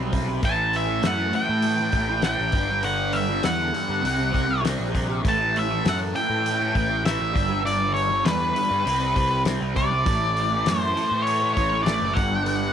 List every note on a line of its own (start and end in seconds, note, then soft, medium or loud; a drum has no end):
0.00 0.39 B1 medium
0.00 0.12 C3 medium
0.00 0.13 G3 medium
0.00 0.13 C4 medium
0.13 0.41 C3 medium
0.13 0.28 G3 medium
0.13 0.27 C4 medium
0.13 kick medium
0.13 open hi-hat soft
0.28 muted distorted electric guitar stroke medium
0.43 0.99 A1 loud
0.43 1.01 A2 medium
0.43 0.88 E3 medium
0.43 0.86 A3 medium
0.43 0.75 A5 loud
0.43 kick loud
0.43 open hi-hat medium
0.73 1.06 E5 medium
0.73 open hi-hat soft
0.87 1.03 E3 soft
0.87 1.03 A3 medium
1.02 1.31 F#2 medium
1.02 1.33 A2 medium
1.02 1.34 E3 medium
1.02 1.34 A3 loud
1.02 snare loud
1.02 open hi-hat medium
1.07 1.33 F#5 medium
1.33 1.79 A2 medium
1.33 1.49 E3 medium
1.33 1.48 A3 medium
1.33 2.23 G5 loud
1.33 open hi-hat soft
1.49 1.90 A2 medium
1.49 1.80 E3 soft
1.49 1.78 A3 medium
1.62 open hi-hat medium
1.79 1.93 E3 medium
1.79 1.95 A3 medium
1.92 2.34 A1 medium
1.92 2.22 A2 medium
1.92 2.09 E3 medium
1.92 2.08 A3 medium
1.92 kick medium
1.92 open hi-hat soft
2.09 muted distorted electric guitar stroke soft
2.22 2.52 A2 medium
2.22 2.53 E3 loud
2.22 2.53 A3 medium
2.22 2.84 G5 medium
2.22 snare medium
2.22 open hi-hat medium
2.39 2.52 A1 medium
2.52 3.40 G1 medium
2.52 2.83 G2 medium
2.52 2.69 D3 medium
2.52 2.70 G3 medium
2.52 kick medium
2.52 open hi-hat soft
2.70 muted distorted electric guitar stroke soft
2.83 3.42 G2 medium
2.83 3.30 D3 medium
2.83 3.29 G3 loud
2.83 3.15 F#5 medium
2.83 open hi-hat medium
3.13 3.41 E5 medium
3.13 open hi-hat soft
3.30 3.44 D3 soft
3.30 3.46 G3 medium
3.43 3.71 E2 medium
3.43 3.72 G2 medium
3.43 3.74 D3 medium
3.43 3.75 G3 medium
3.43 4.60 F#5 medium
3.43 snare loud
3.43 open hi-hat medium
3.73 4.02 G2 medium
3.73 3.90 D3 medium
3.73 3.88 G3 medium
3.73 open hi-hat soft
3.88 4.03 G2 medium
3.88 4.02 D3 medium
3.88 4.03 G3 medium
4.02 4.31 C2 medium
4.02 4.30 C3 medium
4.02 4.19 G3 medium
4.02 4.16 C4 loud
4.02 open hi-hat medium
4.17 4.33 G3 medium
4.17 4.33 C4 medium
4.32 4.75 C2 medium
4.32 4.60 C3 medium
4.32 4.47 G3 medium
4.32 4.46 C4 medium
4.32 kick medium
4.32 open hi-hat soft
4.47 muted distorted electric guitar stroke soft
4.62 4.92 C3 medium
4.62 4.94 G3 medium
4.62 4.94 C4 loud
4.62 snare medium
4.62 open hi-hat medium
4.80 5.21 A#1 medium
4.93 5.22 C3 medium
4.93 5.08 G3 medium
4.93 5.07 C4 medium
4.93 kick medium
4.93 open hi-hat soft
5.08 muted distorted electric guitar stroke medium
5.23 5.81 A1 medium
5.23 5.82 A2 medium
5.23 5.70 E3 medium
5.23 5.67 A3 medium
5.23 kick medium
5.23 open hi-hat medium
5.29 5.57 A5 loud
5.56 5.87 E5 medium
5.56 open hi-hat soft
5.68 5.84 E3 medium
5.68 5.84 A3 medium
5.83 6.12 F#2 medium
5.83 6.12 A2 medium
5.83 6.13 E3 medium
5.83 6.14 A3 medium
5.83 snare loud
5.83 open hi-hat medium
5.89 5.96 F#5 medium
6.14 6.59 A2 medium
6.14 6.30 E3 medium
6.14 6.29 A3 medium
6.14 7.02 G5 loud
6.14 open hi-hat soft
6.30 6.71 A2 medium
6.30 6.61 E3 soft
6.30 6.59 A3 medium
6.46 open hi-hat medium
6.60 6.75 E3 medium
6.60 6.76 A3 medium
6.75 7.16 A1 medium
6.75 7.02 A2 medium
6.75 6.90 E3 medium
6.75 6.89 A3 medium
6.75 kick medium
6.75 open hi-hat soft
6.91 muted distorted electric guitar stroke soft
7.04 7.33 A2 medium
7.04 7.33 E3 loud
7.04 7.34 A3 medium
7.04 7.62 E5 medium
7.04 snare medium
7.04 open hi-hat medium
7.20 7.34 A1 medium
7.33 8.22 G1 medium
7.33 7.63 G2 medium
7.33 7.49 D3 medium
7.33 7.49 G3 medium
7.33 kick loud
7.33 open hi-hat soft
7.49 muted distorted electric guitar stroke medium
7.64 8.24 G2 medium
7.64 8.11 D3 loud
7.64 8.10 G3 loud
7.64 7.93 D5 medium
7.64 open hi-hat medium
7.94 8.26 C#5 medium
7.94 open hi-hat soft
8.10 8.25 D3 soft
8.10 8.27 G3 medium
8.25 8.52 E2 medium
8.25 8.54 G2 medium
8.25 8.55 D3 medium
8.25 8.57 G3 medium
8.25 9.41 B4 medium
8.25 snare loud
8.25 open hi-hat medium
8.55 8.84 G2 medium
8.55 8.71 D3 medium
8.55 8.70 G3 medium
8.55 open hi-hat soft
8.71 8.84 G2 medium
8.71 8.84 D3 soft
8.71 8.85 G3 medium
8.84 9.13 C2 medium
8.84 9.13 C3 medium
8.84 9.01 G3 medium
8.84 8.98 C4 medium
8.84 open hi-hat medium
8.99 9.15 G3 medium
8.99 9.16 C4 medium
9.15 9.57 C2 medium
9.15 9.44 C3 medium
9.15 9.31 G3 medium
9.15 9.30 C4 medium
9.15 kick medium
9.15 open hi-hat medium
9.31 muted distorted electric guitar stroke soft
9.45 9.74 C3 medium
9.45 9.76 G3 medium
9.45 9.75 C4 loud
9.45 snare loud
9.45 open hi-hat medium
9.61 10.02 C2 medium
9.75 10.04 C3 medium
9.75 9.91 G3 medium
9.75 9.90 C4 medium
9.75 10.80 D5 medium
9.75 kick medium
9.75 open hi-hat medium
9.91 muted distorted electric guitar stroke medium
10.06 10.62 A1 loud
10.06 10.65 A2 medium
10.06 10.53 E3 loud
10.06 10.51 A3 medium
10.06 kick loud
10.06 open hi-hat medium
10.37 open hi-hat soft
10.52 10.66 E3 medium
10.52 10.66 A3 medium
10.66 10.93 F#2 medium
10.66 10.94 A2 medium
10.66 10.95 E3 medium
10.66 10.97 A3 medium
10.66 snare loud
10.66 open hi-hat medium
10.80 11.31 C5 medium
10.96 11.41 A2 medium
10.96 11.12 E3 medium
10.96 11.10 A3 medium
10.96 open hi-hat soft
11.11 11.52 A2 medium
11.11 11.42 E3 medium
11.11 11.40 A3 medium
11.22 11.52 C#5 medium
11.27 open hi-hat medium
11.41 11.56 E3 medium
11.41 11.57 A3 medium
11.54 11.98 A1 medium
11.54 11.84 A2 medium
11.54 11.71 E3 medium
11.54 11.82 C#5 medium
11.54 kick medium
11.54 open hi-hat soft
11.58 11.70 A3 medium
11.72 muted distorted electric guitar stroke soft
11.83 12.14 A2 medium
11.83 12.15 E3 medium
11.83 12.16 D5 medium
11.83 open hi-hat medium
11.87 12.15 A3 medium
11.87 snare loud
12.02 12.15 F#1 medium
12.13 12.73 G1 medium
12.13 12.43 G2 medium
12.13 12.30 D3 medium
12.13 12.73 F#5 medium
12.13 kick loud
12.13 open hi-hat soft
12.18 12.29 G3 medium
12.30 muted distorted electric guitar stroke medium
12.44 12.73 G2 medium
12.44 12.73 D3 medium
12.44 12.73 G3 medium
12.44 open hi-hat medium